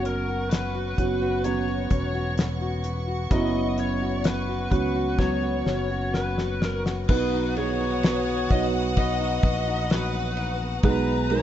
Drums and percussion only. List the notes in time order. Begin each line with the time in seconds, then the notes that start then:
0.05 closed hi-hat
0.51 snare, closed hi-hat
0.98 kick, closed hi-hat
1.44 closed hi-hat
1.91 kick, closed hi-hat
2.38 snare, closed hi-hat
2.84 closed hi-hat
3.31 kick, closed hi-hat
3.78 closed hi-hat
4.24 snare, closed hi-hat
4.72 kick, closed hi-hat
5.19 kick, snare
5.66 snare
6.14 snare
6.38 snare
6.62 snare
6.86 snare
7.09 kick, crash
7.56 ride
8.03 snare, ride
8.51 kick, ride
8.97 kick, ride
9.43 kick, ride
9.90 snare, ride
10.37 ride
10.83 kick, ride
11.30 ride